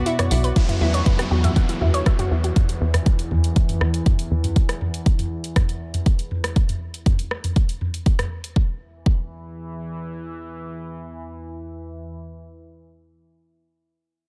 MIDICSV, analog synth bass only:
0, 0, Header, 1, 2, 480
1, 0, Start_track
1, 0, Tempo, 500000
1, 539, Time_signature, 4, 2, 24, 8
1, 13709, End_track
2, 0, Start_track
2, 0, Title_t, "Analog synth bass"
2, 0, Program_c, 0, 38
2, 299, Note_on_c, 0, 35, 88
2, 503, Note_off_c, 0, 35, 0
2, 779, Note_on_c, 0, 40, 93
2, 983, Note_off_c, 0, 40, 0
2, 1259, Note_on_c, 0, 40, 87
2, 1462, Note_off_c, 0, 40, 0
2, 1739, Note_on_c, 0, 40, 83
2, 1943, Note_off_c, 0, 40, 0
2, 2219, Note_on_c, 0, 40, 84
2, 2423, Note_off_c, 0, 40, 0
2, 2699, Note_on_c, 0, 40, 99
2, 2903, Note_off_c, 0, 40, 0
2, 3179, Note_on_c, 0, 40, 84
2, 3383, Note_off_c, 0, 40, 0
2, 3659, Note_on_c, 0, 40, 84
2, 3863, Note_off_c, 0, 40, 0
2, 4139, Note_on_c, 0, 40, 83
2, 4342, Note_off_c, 0, 40, 0
2, 13709, End_track
0, 0, End_of_file